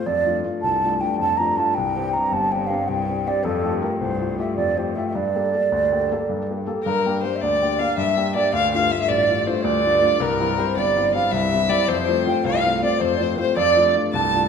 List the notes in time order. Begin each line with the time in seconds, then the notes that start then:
0.06 F2 G2 D5
0.26 A3 D4 F4
0.44 A3 D4 F4
0.61 C2 A5
0.84 A3 D4 F4
1.00 A3 D4 F4 G5
1.19 F2 A5
1.37 A3 D4 F4 A#5
1.56 A3 D4 F4 A5
1.74 C2 G5
1.96 C4 D4 G4
2.13 C4 D4 G4 A#5
2.32 G1 A5
2.51 C4 D4 G4 G5
2.66 C4 D4 G4 F5
2.88 C2 G5
3.08 C4 D4 G4
3.26 C4 D4 G4 D5
3.43 F2 A4
3.63 A3 F4 G4
3.81 A3 F4 G4 A#4
3.99 C2 C5
4.21 A3 F4 G4
4.39 A3 F4 G4 E5
4.56 F2 D5
4.77 A3 F4 G4 C5
4.95 A3 F4 G4 E5
5.07 E5
5.15 G2 D5
5.35 A#3 G4 A4
5.54 A#3 G4 A4
5.72 D2
5.92 A#3 G4 A4
6.11 A#3 G4 A4
6.29 G2
6.50 A#3 G4 A4
6.66 A#3 G4 A4
6.83 G2 A#4
7.06 A#3 D4 G4
7.23 A#3 D4 G4 C5
7.34 C5 E5
7.41 D2 D5
7.61 A#3 D4 G4
7.79 A#3 D4 G4 F5
7.98 G2 E5
8.16 A#3 D4 G4
8.35 A#3 D4 G4 D5
8.52 D2 F5
8.74 A3 D4 F4 F5
8.91 A3 D4 F4 E5
9.02 E5
9.08 A1 D5
9.30 A3 D4 F4
9.47 A3 D4 F4 C5
9.62 D2 D5
9.84 A3 D4 F4
10.02 A3 D4 F4
10.20 C2 A#4
10.40 G3 C4 E4
10.58 G3 C4 E4 C5
10.76 G1 D5
10.96 G3 C4 E4
11.14 G3 C4 E4 F5
11.24 F5
11.31 C2 E5
11.52 G3 C4 E4
11.69 G3 C4 E4 D5
11.87 F2 C5
12.07 A3 C4 F4
12.26 A3 C4 F4 G5
12.44 C2 F5
12.64 A3 C4 F4
12.82 A3 C4 F4 D5
12.98 F2 C5
13.17 A3 C4 F4 D5
13.22 C5
13.36 A3 C4 F4 A#4 C5
13.40 C5
13.56 F2 G2 D5
13.77 A3 D4 F4
13.96 A3 D4 F4
14.12 C2 A5
14.33 A3 D4 F4